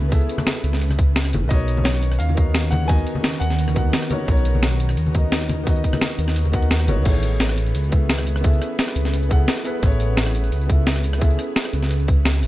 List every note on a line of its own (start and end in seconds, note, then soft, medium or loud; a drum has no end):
0.00 0.28 C#2 medium
0.00 0.09 B3 loud
0.00 1.47 C#4 medium
0.00 0.10 E4 medium
0.00 0.12 G#4 medium
0.00 0.13 A4 medium
0.00 1.47 B4 medium
0.00 1.53 B4 loud
0.00 1.53 C#5 loud
0.00 0.11 E5 medium
0.00 1.53 F#5 loud
0.09 0.95 B3 medium
0.09 0.96 E4 medium
0.09 0.97 G#4 medium
0.09 kick loud
0.09 closed hi-hat medium
0.13 0.97 A4 medium
0.13 0.98 E5 loud
0.21 tambourine soft
0.29 closed hi-hat medium
0.29 tambourine medium
0.38 cross-stick medium
0.38 high conga loud
0.47 snare loud
0.47 closed hi-hat medium
0.56 tambourine soft
0.64 1.35 C#2 loud
0.64 closed hi-hat medium
0.64 tambourine medium
0.73 snare soft
0.73 closed hi-hat soft
0.81 closed hi-hat medium
0.90 cross-stick soft
0.90 tambourine soft
0.90 high conga medium
0.99 kick loud
0.99 closed hi-hat medium
0.99 tambourine medium
1.16 snare loud
1.16 closed hi-hat medium
1.25 cross-stick soft
1.25 closed hi-hat soft
1.25 tambourine soft
1.33 1.44 E1 loud
1.33 closed hi-hat medium
1.33 tambourine medium
1.33 high conga loud
1.43 1.50 C#2 loud
1.48 2.19 B1 loud
1.48 7.02 D#3 medium
1.48 2.33 B3 loud
1.48 4.25 C#4 medium
1.48 2.34 D#4 medium
1.48 2.35 F#4 medium
1.48 7.02 A#4 medium
1.48 1.86 D#5 loud
1.48 kick loud
1.48 closed hi-hat medium
1.52 2.36 A#4 medium
1.52 2.37 C#5 loud
1.60 tambourine soft
1.68 closed hi-hat medium
1.68 tambourine medium
1.77 high conga medium
1.84 2.20 C#5 medium
1.84 snare loud
1.84 closed hi-hat medium
1.94 tambourine soft
2.03 closed hi-hat medium
2.03 tambourine medium
2.12 cross-stick soft
2.12 closed hi-hat soft
2.19 3.06 D#2 medium
2.19 2.73 F5 loud
2.19 closed hi-hat medium
2.29 tambourine soft
2.29 high conga medium
2.34 2.85 B3 medium
2.34 2.86 D#4 medium
2.34 2.87 F#4 medium
2.34 kick loud
2.34 closed hi-hat medium
2.34 tambourine medium
2.39 2.88 A#4 medium
2.39 2.89 D#5 medium
2.55 snare loud
2.55 closed hi-hat medium
2.64 closed hi-hat soft
2.71 2.89 F#5 loud
2.71 closed hi-hat medium
2.71 tambourine medium
2.71 high conga loud
2.86 3.73 B3 medium
2.86 3.73 D#4 medium
2.86 3.74 F#4 medium
2.86 3.37 G#5 loud
2.86 kick loud
2.86 closed hi-hat medium
2.91 3.75 A#4 medium
2.91 3.76 D#5 loud
2.98 tambourine soft
3.07 closed hi-hat medium
3.07 tambourine medium
3.15 high conga medium
3.24 snare loud
3.24 closed hi-hat loud
3.33 tambourine soft
3.40 3.92 D#2 loud
3.40 6.66 F#5 loud
3.40 closed hi-hat medium
3.40 tambourine medium
3.50 snare soft
3.50 closed hi-hat soft
3.59 closed hi-hat medium
3.68 cross-stick soft
3.68 tambourine soft
3.68 high conga medium
3.74 4.08 B3 medium
3.74 4.08 D#4 medium
3.74 4.09 F#4 medium
3.74 4.09 A#4 medium
3.74 4.09 F#5 loud
3.74 kick loud
3.74 closed hi-hat medium
3.74 tambourine medium
3.93 snare loud
3.93 closed hi-hat loud
4.02 cross-stick soft
4.02 closed hi-hat soft
4.09 4.23 B3 medium
4.09 4.25 D#4 medium
4.09 4.26 F#4 medium
4.09 4.27 A#4 medium
4.09 4.27 C#5 loud
4.09 closed hi-hat medium
4.09 tambourine medium
4.09 high conga loud
4.25 4.96 B1 loud
4.25 5.10 B3 loud
4.25 5.12 D#4 medium
4.25 7.03 D#4 medium
4.25 5.13 F#4 medium
4.25 kick loud
4.25 closed hi-hat loud
4.29 5.13 A#4 medium
4.29 5.14 C#5 loud
4.37 tambourine soft
4.45 closed hi-hat medium
4.45 tambourine medium
4.55 high conga medium
4.63 snare loud
4.63 closed hi-hat loud
4.72 tambourine soft
4.80 closed hi-hat medium
4.80 tambourine medium
4.89 cross-stick soft
4.89 closed hi-hat soft
4.97 5.83 D#2 medium
4.97 closed hi-hat loud
5.06 tambourine soft
5.06 high conga medium
5.12 5.62 B3 medium
5.12 5.64 D#4 medium
5.12 5.65 F#4 medium
5.12 kick loud
5.12 closed hi-hat medium
5.12 tambourine medium
5.16 5.65 A#4 medium
5.16 5.66 D#5 medium
5.32 snare loud
5.32 closed hi-hat loud
5.41 closed hi-hat soft
5.49 closed hi-hat medium
5.49 tambourine medium
5.49 high conga medium
5.63 6.50 B3 loud
5.63 6.51 D#4 medium
5.63 6.51 F#4 medium
5.63 kick loud
5.63 closed hi-hat loud
5.68 6.52 A#4 medium
5.68 6.53 D#5 loud
5.76 tambourine soft
5.84 kick medium
5.84 closed hi-hat medium
5.84 tambourine medium
5.93 cross-stick medium
5.93 high conga loud
6.01 snare loud
6.01 closed hi-hat loud
6.10 tambourine soft
6.19 6.89 D#2 loud
6.19 closed hi-hat medium
6.19 tambourine medium
6.28 cross-stick soft
6.28 snare soft
6.28 closed hi-hat soft
6.36 closed hi-hat loud
6.45 tambourine soft
6.45 high conga medium
6.52 6.85 B3 medium
6.52 6.86 D#4 medium
6.52 6.86 F#4 medium
6.52 6.86 A#4 medium
6.52 6.87 F#5 loud
6.52 kick loud
6.52 closed hi-hat medium
6.52 tambourine medium
6.62 closed hi-hat soft
6.71 snare loud
6.71 closed hi-hat loud
6.80 cross-stick soft
6.80 closed hi-hat soft
6.80 tambourine soft
6.87 6.99 F#1 loud
6.87 7.01 B3 medium
6.87 7.03 D#4 medium
6.87 7.04 F#4 medium
6.87 7.04 A#4 medium
6.87 7.04 C#5 loud
6.87 closed hi-hat medium
6.87 tambourine medium
6.87 high conga medium
6.97 7.05 D#2 loud
7.03 7.74 A1 loud
7.03 7.88 B3 loud
7.03 12.47 C#4 medium
7.03 7.89 E4 medium
7.03 7.90 G#4 medium
7.03 12.47 B4 medium
7.03 kick loud
7.03 closed hi-hat loud
7.03 crash loud
7.07 7.91 A4 medium
7.07 7.92 C#5 loud
7.15 tambourine soft
7.23 closed hi-hat medium
7.23 tambourine medium
7.40 snare loud
7.40 closed hi-hat loud
7.49 cross-stick medium
7.49 tambourine soft
7.58 closed hi-hat medium
7.58 tambourine medium
7.67 closed hi-hat soft
7.75 8.60 C#2 medium
7.75 closed hi-hat loud
7.84 tambourine soft
7.89 8.39 B3 medium
7.89 8.41 E4 medium
7.89 8.42 G#4 medium
7.89 kick loud
7.89 closed hi-hat medium
7.89 tambourine medium
7.94 8.43 A4 medium
7.94 8.44 E5 medium
8.10 snare loud
8.10 closed hi-hat loud
8.18 cross-stick medium
8.18 closed hi-hat soft
8.27 closed hi-hat medium
8.27 tambourine medium
8.36 cross-stick medium
8.41 9.27 B3 loud
8.41 9.28 E4 medium
8.41 9.29 G#4 medium
8.41 kick loud
8.41 closed hi-hat medium
8.46 9.30 A4 medium
8.46 9.30 E5 loud
8.53 tambourine soft
8.62 cross-stick soft
8.62 closed hi-hat medium
8.62 tambourine medium
8.79 snare loud
8.79 closed hi-hat loud
8.88 cross-stick medium
8.88 tambourine soft
8.96 9.47 C#2 loud
8.96 closed hi-hat medium
8.96 tambourine medium
9.05 snare soft
9.05 closed hi-hat soft
9.14 closed hi-hat loud
9.23 tambourine soft
9.29 9.62 B3 medium
9.29 9.63 E4 medium
9.29 9.63 G#4 medium
9.29 9.64 A4 medium
9.29 9.64 F#5 loud
9.29 kick loud
9.29 closed hi-hat medium
9.29 tambourine medium
9.48 snare loud
9.48 closed hi-hat loud
9.57 closed hi-hat soft
9.64 9.78 B3 medium
9.64 9.80 E4 medium
9.64 9.81 G#4 medium
9.64 9.81 A4 medium
9.64 9.82 B4 loud
9.64 closed hi-hat medium
9.64 tambourine medium
9.79 10.51 A1 loud
9.79 10.65 B3 loud
9.79 10.66 E4 medium
9.79 10.68 G#4 medium
9.79 kick loud
9.79 closed hi-hat medium
9.84 10.68 A4 medium
9.84 10.69 C#5 loud
9.92 tambourine soft
10.00 closed hi-hat medium
10.00 tambourine medium
10.17 snare loud
10.17 closed hi-hat medium
10.26 cross-stick soft
10.26 tambourine soft
10.35 closed hi-hat medium
10.35 tambourine medium
10.44 closed hi-hat soft
10.52 11.38 C#2 medium
10.52 closed hi-hat loud
10.61 tambourine soft
10.66 11.17 B3 medium
10.66 11.18 E4 medium
10.66 11.19 G#4 medium
10.66 kick loud
10.66 closed hi-hat medium
10.66 tambourine medium
10.71 11.20 A4 medium
10.71 11.21 E5 medium
10.87 snare loud
10.87 closed hi-hat loud
10.96 cross-stick medium
10.96 closed hi-hat soft
11.04 closed hi-hat medium
11.04 tambourine medium
11.13 cross-stick medium
11.18 12.05 B3 medium
11.18 12.05 E4 medium
11.18 12.06 G#4 medium
11.18 kick loud
11.18 closed hi-hat medium
11.23 12.07 A4 medium
11.23 12.08 E5 loud
11.30 tambourine soft
11.39 cross-stick soft
11.39 closed hi-hat medium
11.39 tambourine medium
11.56 snare loud
11.56 closed hi-hat medium
11.65 cross-stick soft
11.65 tambourine soft
11.73 12.44 C#2 loud
11.73 closed hi-hat medium
11.73 tambourine medium
11.82 snare soft
11.82 closed hi-hat soft
11.91 closed hi-hat medium
12.00 tambourine soft
12.08 kick loud
12.08 closed hi-hat medium
12.08 tambourine medium
12.25 snare loud
12.25 closed hi-hat medium
12.35 closed hi-hat soft
12.35 tambourine soft
12.43 12.47 E1 loud
12.43 closed hi-hat medium
12.43 tambourine medium